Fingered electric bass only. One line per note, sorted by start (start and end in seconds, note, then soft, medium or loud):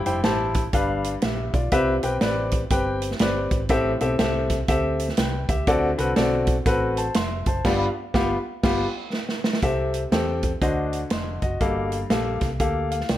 0.06 0.21 F1 medium
0.24 0.66 A1 medium
0.73 1.15 G1 loud
1.23 1.50 A#1 medium
1.54 1.69 B1 medium
1.72 1.99 C2 medium
2.04 2.19 B1 medium
2.22 2.64 A1 medium
2.71 3.13 G1 medium
3.20 3.47 G1 medium
3.51 3.67 G#1 medium
3.69 3.96 A1 loud
4.01 4.17 B1 medium
4.19 4.61 C2 medium
4.68 5.10 D2 medium
5.18 5.45 C2 medium
5.49 5.64 C#2 medium
5.67 5.94 D2 loud
5.99 6.14 C2 medium
6.17 6.59 B1 loud
6.66 7.08 A1 medium
7.16 7.42 F1 medium
7.46 7.62 F#1 medium
7.65 7.86 G1 loud
8.14 8.35 G1 loud
8.64 8.85 G1 medium
9.63 10.05 C2 loud
10.12 10.54 E2 medium
10.61 11.04 D2 medium
11.11 11.38 F1 medium
11.42 11.58 F#1 medium
11.61 12.03 G1 medium
12.10 12.37 A#1 medium
12.42 12.57 C2 medium
12.60 13.02 D2 medium
13.09 13.18 C2 medium